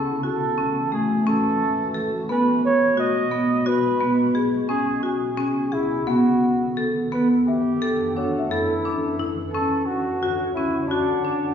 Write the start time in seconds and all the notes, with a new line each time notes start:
Already playing: E3 A3 C#4 F#4 A4
0.23 F#4 A4
0.58 C#4
0.92 A3 G#4
1.27 C#4 A4
1.94 A4
2.29 B2 G#3 B3 B4 G#5
2.65 C#5
2.97 F#4 D#5
3.32 B3
3.66 F#4 B4
4.01 B3
4.35 G#4
4.69 B3 C#4 G#4
5.03 F#4 G#4
5.38 C#4
5.72 E4 G#4
6.07 B3 F#4 F#5
6.77 A4
7.12 F#2 E3 B3 D4 A4 B4
7.47 G4 E5
7.82 A4
8.16 D4 F#4 C#5
8.39 E5
8.51 E4 A4
8.85 D4
9.20 E4
9.53 D3 C#4 A4 C#5 F#5
9.86 F#4
10.23 F#4
10.55 C#4 E4
10.88 D4 F#4
11.25 D4